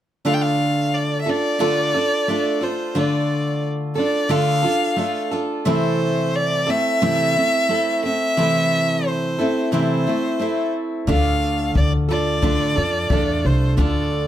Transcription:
0.25 1.26 D3 medium
0.25 1.59 A3 medium
0.25 1.27 D4 medium
0.25 1.26 F4 medium
0.25 1.26 A4 medium
0.25 0.35 F5 medium
0.34 0.43 G5 medium
0.42 0.96 F5 medium
0.95 1.21 D5 medium
1.21 1.31 E5 medium
1.26 1.59 D4 soft
1.26 1.59 F4 soft
1.26 1.59 A4 soft
1.26 2.65 D5 medium
1.59 1.94 D3 medium
1.59 1.94 A3 medium
1.59 1.94 D4 medium
1.59 1.94 F4 medium
1.59 1.93 A4 medium
1.94 2.28 D4 soft
1.94 2.29 F4 soft
1.94 2.28 A4 soft
2.28 2.62 A3 soft
2.28 2.62 D4 medium
2.28 2.61 F4 medium
2.28 2.60 A4 medium
2.61 2.95 D4 soft
2.61 2.95 F4 soft
2.61 2.95 A4 soft
2.61 3.01 C5 medium
2.95 3.97 D3 medium
2.95 4.29 A3 medium
2.95 3.97 D4 medium
2.95 3.96 F4 medium
2.95 3.95 A4 medium
2.99 3.65 D5 medium
3.95 4.29 D4 soft
3.95 4.29 F4 soft
3.95 4.29 A4 soft
3.95 4.33 D5 medium
4.29 4.64 D3 medium
4.29 4.64 A3 medium
4.29 4.64 D4 medium
4.29 4.63 F4 medium
4.29 4.61 A4 medium
4.29 5.33 F5 medium
4.63 4.97 D4 soft
4.63 4.97 F4 soft
4.63 4.98 A4 soft
4.96 5.31 A3 soft
4.96 5.32 D4 soft
4.96 5.31 F4 medium
4.96 5.30 A4 medium
5.31 5.66 D4 soft
5.31 5.66 F4 soft
5.31 5.66 A4 soft
5.65 6.67 C3 medium
5.65 6.67 E3 medium
5.65 6.69 A3 medium
5.65 6.68 C4 medium
5.65 6.67 E4 medium
5.65 6.66 A4 medium
5.70 6.37 C5 medium
6.35 6.72 D5 medium
6.67 7.01 A3 soft
6.67 7.02 C4 soft
6.67 7.02 E4 soft
6.67 7.01 A4 soft
6.67 8.04 E5 loud
7.02 7.36 C3 medium
7.02 7.36 E3 medium
7.02 7.36 A3 medium
7.02 7.36 C4 medium
7.02 7.35 E4 medium
7.02 7.34 A4 medium
7.36 7.68 A3 soft
7.36 7.68 C4 soft
7.36 7.70 E4 soft
7.36 7.69 A4 soft
7.69 8.03 A3 medium
7.69 8.03 C4 medium
7.69 8.03 E4 medium
7.69 8.02 A4 medium
8.03 8.37 A3 soft
8.03 8.36 C4 soft
8.03 8.37 E4 soft
8.03 8.37 A4 soft
8.03 9.09 E5 loud
8.37 9.38 C3 medium
8.37 9.39 E3 medium
8.37 9.41 A3 medium
8.37 9.39 C4 medium
8.37 9.38 E4 medium
8.37 9.38 A4 medium
9.07 9.74 C5 medium
9.39 9.71 A3 soft
9.39 9.72 C4 soft
9.39 9.73 E4 soft
9.39 9.72 A4 soft
9.72 10.06 C3 medium
9.72 10.06 E3 medium
9.72 10.06 A3 medium
9.72 10.06 C4 medium
9.72 10.06 E4 medium
9.72 10.06 A4 medium
9.72 10.71 C5 medium
10.07 10.38 A3 soft
10.07 10.39 C4 soft
10.07 10.40 E4 soft
10.07 10.40 A4 soft
10.39 11.08 A3 soft
10.39 11.08 C4 soft
10.39 11.08 E4 medium
10.39 11.08 A4 medium
11.07 11.72 D2 medium
11.07 12.09 D3 medium
11.07 12.43 A3 medium
11.07 12.09 D4 medium
11.07 12.10 F4 medium
11.07 12.08 A4 medium
11.07 11.73 F5 medium
11.07 kick medium
11.75 12.59 D2 medium
11.75 11.92 D5 medium
11.75 kick loud
12.09 12.42 D4 soft
12.09 12.43 F4 soft
12.09 12.43 A4 soft
12.09 13.47 D5 medium
12.42 12.76 D3 medium
12.42 12.77 A3 medium
12.42 12.77 D4 medium
12.42 12.76 F4 medium
12.42 12.75 A4 medium
12.42 kick medium
12.76 13.08 F2 medium
12.76 13.11 D4 soft
12.76 13.11 F4 soft
12.76 13.10 A4 soft
13.10 13.42 E2 medium
13.10 13.77 A3 medium
13.10 13.77 D4 medium
13.10 13.78 F4 medium
13.10 13.79 A4 medium
13.10 kick loud
13.45 13.76 C2 medium
13.45 13.79 C5 medium
13.77 14.27 D2 medium
13.77 14.27 D3 medium
13.77 14.27 A3 medium
13.77 14.27 D4 medium
13.77 14.27 F4 medium
13.77 14.27 A4 medium
13.77 14.27 D5 medium
13.77 kick medium

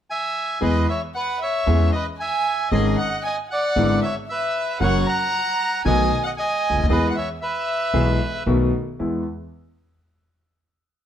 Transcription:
0.10 0.59 E5 medium
0.10 0.64 G#5 medium
0.61 0.84 E2 medium
0.61 0.84 E3 medium
0.61 0.84 G#3 medium
0.61 0.84 B3 medium
0.61 0.84 G#4 medium
0.61 0.87 B4 medium
0.61 0.87 D#5 medium
0.88 1.02 C#5 soft
0.88 1.00 E5 soft
0.88 1.01 E5 medium
1.14 1.40 B4 soft
1.14 1.39 F#5 medium
1.40 1.91 C#5 soft
1.40 1.89 E5 medium
1.40 1.90 E5 medium
1.66 1.89 E2 medium
1.66 1.89 E3 medium
1.66 1.89 G#3 medium
1.66 1.89 C#4 medium
1.66 1.89 G#4 medium
1.92 2.07 B4 soft
1.92 2.04 D#5 soft
1.92 2.05 D#5 medium
2.18 2.70 E5 medium
2.18 2.68 G#5 medium
2.18 2.69 G#5 medium
2.71 2.94 G#1 medium
2.71 2.94 G#2 medium
2.71 2.94 D#3 medium
2.71 2.94 G#3 medium
2.71 2.94 C#4 medium
2.71 2.94 G#4 medium
2.71 2.97 G#4 medium
2.71 2.96 D#5 medium
2.71 2.98 D#5 medium
2.97 3.24 D#5 medium
2.97 3.22 F#5 medium
3.22 3.35 G#5 medium
3.22 3.36 G#5 medium
3.26 3.38 D#5 medium
3.49 3.98 F#5 medium
3.49 3.99 F#5 medium
3.53 4.00 D5 medium
3.76 3.98 G#1 medium
3.76 3.99 G#1 medium
3.76 3.99 G#2 medium
3.76 3.98 D3 medium
3.76 3.98 G#3 medium
3.76 3.99 B3 medium
3.76 3.99 E4 medium
4.01 4.13 E5 medium
4.01 4.15 E5 medium
4.05 4.16 C#5 soft
4.28 4.79 B4 medium
4.28 4.77 E5 medium
4.28 4.78 E5 medium
4.79 5.03 F#1 medium
4.79 5.03 F#2 medium
4.79 5.02 C#3 medium
4.79 5.02 F#3 medium
4.79 5.03 A#3 medium
4.79 5.03 F#4 medium
4.79 5.04 F#5 medium
4.79 5.07 F#5 medium
4.84 5.07 C#5 medium
5.05 5.82 F#5 medium
5.05 5.80 A#5 medium
5.05 5.81 A#5 medium
5.84 6.07 B1 medium
5.84 6.07 B2 medium
5.84 6.07 D#3 medium
5.84 6.07 A3 medium
5.84 6.07 B3 medium
5.84 6.07 F#4 medium
5.84 6.23 D#5 medium
5.84 6.21 G#5 medium
5.84 6.22 G#5 medium
6.23 6.32 D#5 medium
6.23 6.29 F#5 medium
6.23 6.31 F#5 medium
6.36 6.87 D#5 medium
6.36 6.85 G#5 medium
6.36 6.86 G#5 medium
6.70 6.76 C#2 soft
6.76 6.83 D2 soft
6.83 6.90 D#2 medium
6.83 6.89 D#2 medium
6.89 7.11 E2 medium
6.89 7.12 E2 medium
6.89 7.11 E3 medium
6.89 7.11 G#3 medium
6.89 7.11 B3 medium
6.89 7.12 G#4 medium
6.89 7.09 B4 medium
6.89 7.07 D#5 medium
6.89 7.08 D#5 medium
7.08 7.14 F#5 soft
7.08 7.16 F#5 soft
7.14 7.29 C#5 soft
7.14 7.26 E5 medium
7.14 7.28 E5 medium
7.41 8.44 B4 medium
7.41 8.43 E5 medium
7.94 8.16 B1 medium
7.94 8.16 B2 medium
7.94 8.16 E3 medium
7.94 8.16 G#3 soft
7.94 8.16 B3 medium
7.94 8.16 G#4 medium
8.46 8.69 B1 medium
8.46 8.69 B2 medium
8.46 8.69 D#3 medium
8.46 8.69 A3 soft
8.46 8.69 B3 medium
8.46 8.69 F#4 medium
8.99 9.22 E2 soft
8.99 9.22 G#3 soft
8.99 9.22 B3 soft
8.99 9.22 E4 soft

